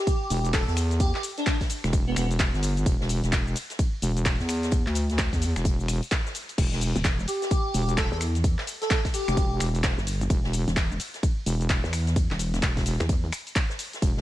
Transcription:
Already playing: digital synth lead G4
0.07 kick, closed hi-hat, ride, shaker
0.30 wobble bass E1, closed hi-hat, open hi-hat, shaker
0.45 closed hi-hat, shaker
0.53 digital synth lead A4, kick, snare, clap, closed hi-hat, open hi-hat, ride, shaker
0.67 wobble bass E2, digital synth lead A4, snare, shaker
0.77 finger snap, closed hi-hat, open hi-hat, shaker
0.91 snare, closed hi-hat, shaker
1.00 digital synth lead G4, kick, closed hi-hat, ride, shaker
1.14 digital synth lead G4, snare, clap
1.23 closed hi-hat, open hi-hat, shaker
1.37 digital synth lead D4, snare, closed hi-hat, shaker
1.46 kick, snare, clap, closed hi-hat, ride, shaker
1.61 kick, snare, open hi-hat, shaker
1.70 closed hi-hat, open hi-hat, shaker
1.84 wobble bass E1, finger snap, snare, closed hi-hat, shaker
1.93 kick, closed hi-hat, ride, shaker
2.07 digital synth lead B3, closed hi-hat
2.16 wobble bass E1, digital synth lead B3, finger snap, closed hi-hat, open hi-hat, shaker
2.31 open hi-hat, shaker
2.40 kick, snare, clap, closed hi-hat, ride, shaker
2.54 wobble bass G1, snare, shaker
2.63 closed hi-hat, open hi-hat, shaker
2.77 closed hi-hat, shaker
2.86 wobble bass E1, kick, closed hi-hat, ride, shaker
3.00 wobble bass E1, snare
3.09 closed hi-hat, open hi-hat, shaker
3.23 wobble bass E1, snare, closed hi-hat, shaker
3.32 kick, snare, clap, closed hi-hat, ride, shaker
3.47 shaker
3.55 closed hi-hat, open hi-hat, shaker
3.70 snare, closed hi-hat, shaker
3.79 kick, closed hi-hat, ride, shaker
4.02 wobble bass E1, closed hi-hat, open hi-hat, shaker
4.17 closed hi-hat, shaker
4.25 kick, snare, clap, closed hi-hat, open hi-hat, ride, shaker
4.40 wobble bass E2, snare, shaker
4.49 finger snap, closed hi-hat, open hi-hat, shaker
4.63 snare, closed hi-hat, shaker
4.71 kick, closed hi-hat, ride, shaker
4.86 wobble bass D2, snare, clap, shaker
4.95 closed hi-hat, open hi-hat, shaker
5.10 snare, closed hi-hat, shaker
5.18 kick, snare, clap, closed hi-hat, ride, shaker
5.32 wobble bass E2, kick, snare, open hi-hat, shaker
5.42 closed hi-hat, open hi-hat, shaker
5.56 wobble bass E1, finger snap, snare, closed hi-hat, shaker
5.65 kick, closed hi-hat, ride, shaker
5.79 closed hi-hat, shaker
5.88 finger snap, closed hi-hat, open hi-hat, shaker
6.03 open hi-hat, shaker
6.11 kick, snare, clap, closed hi-hat, ride, shaker
6.26 snare, shaker
6.35 closed hi-hat, open hi-hat, shaker
6.49 closed hi-hat, shaker
6.58 wobble bass E1, kick, closed hi-hat, crash, ride, shaker
6.72 wobble bass E1, snare
6.81 closed hi-hat, open hi-hat, shaker
6.95 wobble bass E1, snare, closed hi-hat, shaker
7.04 kick, snare, clap, closed hi-hat, ride, shaker
7.20 shaker
7.28 digital synth lead G4, closed hi-hat, open hi-hat, shaker
7.42 snare, closed hi-hat, shaker
7.51 kick, closed hi-hat, ride, shaker
7.74 wobble bass E1, closed hi-hat, open hi-hat, shaker
7.89 closed hi-hat, shaker
7.97 digital synth lead A4, kick, snare, clap, closed hi-hat, open hi-hat, ride, shaker
8.12 wobble bass E2, digital synth lead A4, snare, shaker
8.20 finger snap, closed hi-hat, open hi-hat, shaker
8.35 snare, closed hi-hat, shaker
8.44 kick, closed hi-hat, ride, shaker
8.58 snare, clap
8.67 closed hi-hat, open hi-hat, shaker
8.81 digital synth lead A4, snare, closed hi-hat, shaker
8.90 kick, snare, clap, closed hi-hat, ride, shaker
9.05 kick, snare, open hi-hat, shaker
9.14 digital synth lead G4, closed hi-hat, open hi-hat, shaker
9.28 wobble bass E1, finger snap, snare, closed hi-hat, shaker
9.37 kick, closed hi-hat, ride, shaker
9.52 closed hi-hat
9.60 wobble bass E1, finger snap, closed hi-hat, open hi-hat, shaker
9.75 open hi-hat, shaker
9.83 kick, snare, clap, closed hi-hat, ride, shaker
9.98 wobble bass G1, snare, shaker
10.07 closed hi-hat, open hi-hat, shaker
10.21 closed hi-hat, shaker
10.30 wobble bass E1, kick, closed hi-hat, ride, shaker
10.44 wobble bass E1, snare
10.53 closed hi-hat, open hi-hat, shaker
10.68 wobble bass E1, snare, closed hi-hat, shaker
10.76 kick, snare, clap, closed hi-hat, ride, shaker
10.92 shaker
11.00 closed hi-hat, open hi-hat, shaker
11.14 snare, closed hi-hat, shaker
11.23 kick, closed hi-hat, ride, shaker
11.46 wobble bass E1, closed hi-hat, open hi-hat, shaker
11.61 closed hi-hat, shaker
11.70 kick, snare, clap, closed hi-hat, ride, shaker
11.84 wobble bass E2, snare, shaker
11.93 finger snap, closed hi-hat, open hi-hat, shaker
12.07 snare, closed hi-hat, shaker
12.16 kick, closed hi-hat, ride, shaker
12.30 wobble bass E1, snare, clap
12.39 closed hi-hat, open hi-hat, shaker
12.54 snare, closed hi-hat, shaker
12.62 wobble bass E1, kick, snare, clap, closed hi-hat, ride, shaker
12.77 kick, snare, open hi-hat, shaker
12.86 closed hi-hat, open hi-hat, shaker
13.00 wobble bass E2, finger snap, snare, closed hi-hat, shaker
13.09 kick, closed hi-hat, ride, shaker
13.24 closed hi-hat
13.32 finger snap, closed hi-hat, open hi-hat, shaker
13.47 open hi-hat, shaker
13.56 kick, clap, closed hi-hat, ride, shaker
13.69 snare, shaker
13.79 closed hi-hat, open hi-hat, shaker
13.93 snare, closed hi-hat, shaker
14.02 wobble bass E1, kick, closed hi-hat, ride, shaker
14.17 wobble bass E1, snare

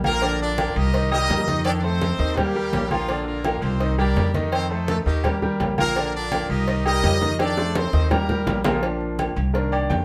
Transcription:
Already playing: upright bass A#1
0.04 grand piano F3 F4 A#4, horn section A#3 D4 F4 A#4, high conga, low agogo
0.21 grand piano D3 D4 D5, cowbell, low agogo
0.40 horn section D4 F4 A#4 D5, high conga
0.58 grand piano F3 F4 A#4, cowbell, high conga, low timbale, low agogo
0.76 upright bass C2, horn section D#4 G4 A#4 D#5, high conga, low agogo
0.94 grand piano D#3 D#4 D#5, cowbell, high conga
1.12 grand piano G3 G4 A#4, horn section D#4 G4 A#4 D#5, high conga, low agogo
1.29 upright bass F2, cowbell, high conga, low timbale, low agogo
1.48 grand piano D#3 D#4 D#5, cowbell, high conga
1.65 horn section D4 A4 D5, cowbell, high conga, low agogo
1.77 horn section D4 D5
1.83 grand piano A3 A4 C5, horn section C4 D#4 A4 C5, high conga
2.01 cowbell, high conga, low timbale, low agogo
2.19 upright bass D#2, grand piano D#3 D#4 D#5, high conga
2.36 horn section G3 A#3 G4, grand piano G3 G4 A#4, cowbell, high conga, low conga, low agogo
2.55 grand piano G3 G4 A#4, high conga
2.73 upright bass A#1, cowbell, high conga, low timbale, low agogo
2.90 horn section F3 A#3 D4 F4, grand piano F3 F4 A#4, high conga, low agogo
3.09 grand piano D3 D4 D5, cowbell, high conga, low agogo
3.26 horn section A#3 D4 F4 A#4, high conga
3.44 grand piano F3 F4 A#4, cowbell, high conga, low timbale, low agogo
3.62 upright bass C2, horn section C4 D#4 G4 C5, high conga, low agogo
3.80 grand piano D#3 D#4 D#5, cowbell, high conga
3.98 grand piano G3 G4 A#4, horn section D4 G4 A#4 D5, high conga, low agogo
4.16 upright bass F2, cowbell, high conga, low timbale, low agogo
4.34 grand piano D#3 D#4 D#5, cowbell, high conga
4.52 horn section C4 D#4 A4 C5, cowbell, high conga, low agogo
4.71 horn section A3 A4, grand piano A3 A4 C5, high conga
4.88 horn section A3 A4, cowbell, high conga, low timbale, low agogo
5.06 upright bass D#2, grand piano D#3 D#4 D#5, horn section G3 A#3 G4, high conga
5.24 grand piano G3 G4 A#4, cowbell, high conga, low conga, low agogo
5.42 grand piano G3 G4 A#4, high conga, low conga
5.60 upright bass A#1, cowbell, high conga, low timbale, low agogo
5.78 grand piano F3 F4 A#4, horn section A#3 D4 F4 A#4, high conga, low agogo
5.96 grand piano D3 D4 D5, cowbell, high conga, low agogo
6.14 horn section D4 F4 A#4 D5, high conga
6.32 grand piano F3 F4 A#4, cowbell, high conga, low timbale, low agogo
6.50 upright bass C2, horn section D#4 G4 A#4 D#5, high conga, low agogo
6.68 grand piano D#3 D#4 D#5, cowbell, high conga
6.86 grand piano G3 G4 A#4, horn section D#4 G4 A#4 D#5, high conga, low agogo
7.03 upright bass F2, cowbell, high conga, low timbale, low agogo
7.21 grand piano D#3 D#4 D#5, cowbell, high conga
7.39 horn section D4 A4 D5, cowbell, high bongo, high conga, low agogo
7.57 grand piano A3 A4 C5, high bongo, high conga
7.75 horn section C4 D#4 A4 C5, cowbell, high bongo, high conga, high timbale, low agogo
7.93 upright bass D#2, grand piano D#3 D#4 D#5, low bongo, high conga
8.11 grand piano G3 G4 A#4, horn section A#3 F4 G4 A#4, cowbell, low bongo, high conga, low conga, low agogo
8.29 grand piano G3 G4 A#4, low bongo, high conga, low conga
8.47 upright bass A#1, cowbell, low bongo, high conga, low timbale, low agogo
8.64 grand piano F3 F4 A#4, low bongo, high conga, low timbale, low agogo
8.82 grand piano F3 A#3 D4, cowbell, high conga, low agogo
9.01 high conga
9.19 cowbell, high conga, low timbale, low agogo
9.36 upright bass C2, high conga, low agogo
9.53 grand piano D#3 A#3 D4 A#4, cowbell, high conga
9.72 grand piano D5, high conga, low agogo
9.90 upright bass F2, grand piano G5, cowbell, high conga, low timbale, low agogo

